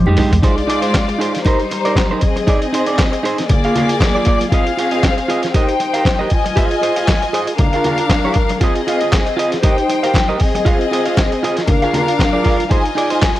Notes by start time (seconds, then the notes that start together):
Already playing: F3 G#3 C4 D#4 G4
0.06 F2 G#3 D#4 G4, high conga
0.17 G#3 D#4 G4, floor tom, open hi-hat
0.32 E2, muted clean electric guitar stroke, closed hi-hat, floor tom
0.42 G#3 D#4 F4 G#4 C5 D5, kick, closed hi-hat, muted conga
0.57 muted clean electric guitar stroke, closed hi-hat
0.67 D#4 G#4 D5, closed hi-hat
0.82 D#4 G#4 C5, closed hi-hat
0.94 kick, snare, clap, closed hi-hat, high conga
1.08 muted clean electric guitar stroke, closed hi-hat
1.19 D#4 G#4 C5, closed hi-hat
1.34 muted clean electric guitar stroke, snare, closed hi-hat
1.45 G3 D#4 A#4 C5, kick, closed hi-hat, muted conga
1.60 muted clean electric guitar stroke, closed hi-hat
1.71 muted clean electric guitar stroke, closed hi-hat, muted conga
1.85 D#4 A#4 D5, closed hi-hat
1.95 kick, snare, clap, closed hi-hat, high conga
2.10 D#4 A#4 C5, high conga
2.21 C4 G#4 D#5, muted clean electric guitar stroke, kick, closed hi-hat
2.36 muted clean electric guitar stroke, closed hi-hat, high conga
2.47 D#4 G#4 D5, kick, closed hi-hat, muted conga
2.62 muted clean electric guitar stroke, closed hi-hat
2.73 D#4 G#4 C5, closed hi-hat
2.86 D#4 G#4 D5, closed hi-hat
2.99 kick, snare, clap, closed hi-hat, high conga
3.12 muted clean electric guitar stroke, closed hi-hat
3.23 D#4 G#4 C5, closed hi-hat
3.38 muted clean electric guitar stroke, snare, closed hi-hat
3.49 A#3 G#4 D5, muted clean electric guitar stroke, kick, closed hi-hat, muted conga, low conga
3.64 F4 G#4 F5, closed hi-hat
3.76 F4 G#4 F5, closed hi-hat, muted conga, low conga
3.89 muted clean electric guitar stroke, closed hi-hat
4.00 muted clean electric guitar stroke, kick, snare, clap, closed hi-hat, high conga
4.15 F4 G#4 D5, high conga
4.25 F4 G#4 D5, kick, closed hi-hat
4.40 muted clean electric guitar stroke, closed hi-hat, high conga
4.52 C4 F4 G#4 D#5 F5, kick, closed hi-hat, muted conga
4.66 muted clean electric guitar stroke, closed hi-hat
4.77 F4 G#4 F5, closed hi-hat
4.91 F4 G#4 D#5, closed hi-hat
5.03 kick, snare, clap, closed hi-hat, high conga
5.17 muted clean electric guitar stroke, closed hi-hat
5.28 F4 G#4 D#5, closed hi-hat
5.43 muted clean electric guitar stroke, snare, closed hi-hat
5.54 D#4 G4 A#4 C5 D#5 G5, kick, closed hi-hat, muted conga
5.69 muted clean electric guitar stroke, closed hi-hat
5.80 muted clean electric guitar stroke, closed hi-hat, muted conga
5.94 G4 A#4 F5, closed hi-hat
6.05 muted clean electric guitar stroke, kick, snare, clap, closed hi-hat, high conga
6.19 G4 A#4 D#5, high conga
6.30 F4 D#5 G#5, muted clean electric guitar stroke, kick, closed hi-hat
6.44 muted clean electric guitar stroke, closed hi-hat, high conga
6.56 G#4 C5 F5, kick, closed hi-hat, muted conga
6.71 muted clean electric guitar stroke, closed hi-hat
6.82 G#4 C5 D#5, closed hi-hat
6.96 G#4 C5 F5, closed hi-hat
7.08 kick, snare, clap, closed hi-hat, high conga
7.22 muted clean electric guitar stroke, closed hi-hat
7.33 G#4 C5 D#5, closed hi-hat
7.47 muted clean electric guitar stroke, closed hi-hat
7.58 D4 A#4 F5, muted clean electric guitar stroke, kick, closed hi-hat, muted conga, low conga
7.73 F4 G#4 F5, closed hi-hat
7.84 F4 G#4 F5, closed hi-hat, muted conga, low conga
7.98 muted clean electric guitar stroke, closed hi-hat
8.10 muted clean electric guitar stroke, kick, snare, clap, closed hi-hat, high conga
8.25 F4 G#4 D5, high conga
8.34 muted clean electric guitar stroke, kick, closed hi-hat
8.49 muted clean electric guitar stroke, closed hi-hat, high conga
8.61 C4 F4 G#4 D#5, kick, closed hi-hat, muted conga
8.75 muted clean electric guitar stroke, closed hi-hat
8.87 F4 G#4 F5, closed hi-hat
9.01 F4 G#4 D#5, closed hi-hat
9.12 kick, snare, clap, closed hi-hat, high conga
9.26 muted clean electric guitar stroke, closed hi-hat
9.37 F4 G#4 D#5, closed hi-hat
9.52 muted clean electric guitar stroke, snare, closed hi-hat
9.63 D#4 G4 A#4 C5 D#5 G5, kick, closed hi-hat, muted conga
9.78 muted clean electric guitar stroke, closed hi-hat
9.88 muted clean electric guitar stroke, closed hi-hat, muted conga
10.03 G4 A#4 F5, closed hi-hat
10.14 muted clean electric guitar stroke, kick, snare, clap, closed hi-hat, high conga
10.28 G4 A#4 D#5, high conga
10.40 C4 G#4 D#5, muted clean electric guitar stroke, kick, open hi-hat
10.55 muted clean electric guitar stroke, closed hi-hat, high conga
10.65 F4 G#4 F5, kick, closed hi-hat, muted conga
10.80 muted clean electric guitar stroke, closed hi-hat
10.91 F4 G#4 D#5, closed hi-hat
11.06 F4 G#4 F5, closed hi-hat
11.17 kick, snare, clap, closed hi-hat, high conga
11.32 muted clean electric guitar stroke, closed hi-hat
11.43 F4 G#4 D#5, closed hi-hat
11.57 muted clean electric guitar stroke, snare, closed hi-hat
11.67 D4 A#4 F5, muted clean electric guitar stroke, kick, closed hi-hat, muted conga, low conga
11.82 F4 G#4 F5, closed hi-hat
11.93 F4 G#4 F5, closed hi-hat, muted conga, low conga
12.08 muted clean electric guitar stroke, closed hi-hat
12.19 muted clean electric guitar stroke, kick, snare, clap, closed hi-hat, high conga
12.33 F4 G#4 D5, high conga
12.44 F4 G#4 D5, kick, open hi-hat
12.58 muted clean electric guitar stroke, closed hi-hat, high conga
12.69 D#4 F4 G#4 C5 D#5 G#5, kick, closed hi-hat, muted conga
12.84 muted clean electric guitar stroke, closed hi-hat
12.95 D#4 G#4 D5, closed hi-hat
13.10 D#4 G#4 C5, closed hi-hat
13.22 kick, snare, clap, closed hi-hat, high conga
13.36 muted clean electric guitar stroke, closed hi-hat